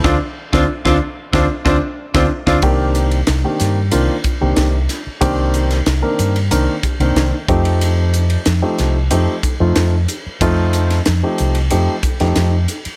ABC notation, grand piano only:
X:1
M:4/4
L:1/16
Q:1/4=92
K:Cdor
V:1 name="Grand piano"
[CDF] z2 [CDF] z [CDF] z2 [CDF] z [CDF] z2 [CDF] z [CDF] | [E,B,CDG]3 z2 [E,B,CDG]2 z [E,B,CDF] z [DF] [E,B,CDG]2 z [DF] z | [E,B,CDG]3 z2 [E,B,CDB]2 z [E,B,CDB] z [DG] [E,B,CDB]2 z [F,A,CEG]2- | [F,A,CEG]4 z [F,A,CEG]2 z [F,A,CEG] z [EA] [F,A,CEF]2 z [EG] z |
[F,A,CEF]3 z2 [F,A,CEG]2 z [F,A,CEG] z [EA] [F,A,CEG]2 z [EA] z |]